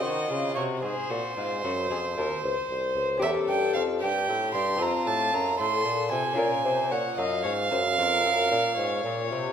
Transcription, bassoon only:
\new Staff \with { instrumentName = "Bassoon" } { \clef bass \time 12/8 \key bes \minor \tempo 4. = 76 ees8 des8 c8 aes,8 bes,8 aes,8 ges,8 f,8 ees,8 des,8 c,8 des,8 | e,8 g,8 f,8 g,8 a,8 g,8 f,8 a,8 ges,8 a,8 bes,8 c8 | bes,8 c8 bes,8 ges,8 aes,8 ges,8 f,8 ges,8 bes,8 aes,8 bes,8 c8 | }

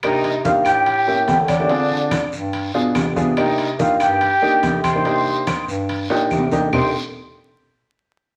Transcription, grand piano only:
\new Staff \with { instrumentName = "Grand piano" } { \time 4/4 \key c \minor \tempo 4 = 143 <bes d' ees' g'>8. r16 <bes d' ees' g'>4 r8 <bes cis' e' g'>4 r16 <bes cis' e' g'>16 | <c' d' f' aes'>4. r4 <b d' f' aes'>8. r16 <b d' f' aes'>16 r16 | <bes d' ees' g'>8. r16 <bes d' ees' g'>4 r8 <bes d' ees' g'>4 r16 <bes d' ees' g'>16 | <bes d' ees' g'>4. r4 <bes d' ees' g'>8. r16 <bes d' ees' g'>16 r16 |
<bes d' ees' g'>8 r2. r8 | }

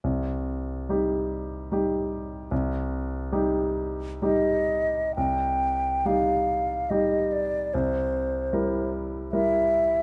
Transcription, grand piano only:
\new Staff \with { instrumentName = "Grand piano" } { \time 3/4 \key c \minor \tempo 4 = 72 c,4 <g ees' g'>4 <g ees' g'>4 | c,4 <g ees' g'>4 <g ees' g'>4 | c,4 <g ees' g'>4 <g ees' g'>4 | c,4 <g e' bes'>4 <g e' bes'>4 | }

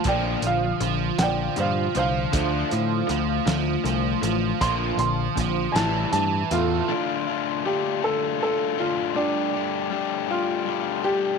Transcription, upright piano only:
\new Staff \with { instrumentName = "Upright piano" } { \time 6/8 \key d \minor \tempo 4. = 53 << { <d'' g''>8 f''8 r8 <d'' fis'' g''>8 <c'' f''>8 <c'' f''>8~ | <c'' f''>2~ <c'' f''>8 r8 | c'''8 c'''4 <gis'' a''>8 a''4 | r2. |
r2. | } \\ { r2. | r2. | r4. e'4 f'8~ | f'4 g'8 a'8 a'8 f'8 |
d'4. f'4 g'8 | } >> }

